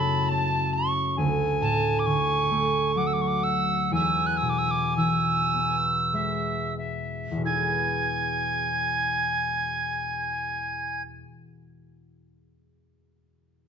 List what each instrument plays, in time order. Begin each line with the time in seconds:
Already playing: harp F#2 C#3 A3 B3 E4, recorder A5, tin whistle B5
0.24 tin whistle B5
0.29 harp C#4, tin whistle A5
0.74 tin whistle C#6
1.17 harp D2, recorder G#5
1.61 harp A2, tin whistle A5
1.99 tin whistle D6
2.06 harp D3, tin whistle C#6
2.51 harp A3
2.95 harp F#3, recorder F#5, tin whistle D6
3.07 tin whistle E6
3.13 tin whistle D6
3.22 tin whistle C#6
3.27 tin whistle D6
3.44 tin whistle E6
3.91 harp E2, recorder G#5, tin whistle E6
4.27 tin whistle F#6
4.37 tin whistle E6
4.42 harp B2
4.50 tin whistle D6
4.58 tin whistle E6
4.71 tin whistle D6
4.97 harp E3, tin whistle E6
5.54 harp B3
6.13 harp G#3, recorder E5
6.78 recorder E5
7.31 harp E2
7.37 harp B2
7.44 harp E4, recorder G#5, tin whistle G#6
7.50 harp G#4
7.56 harp B4
7.62 harp G#5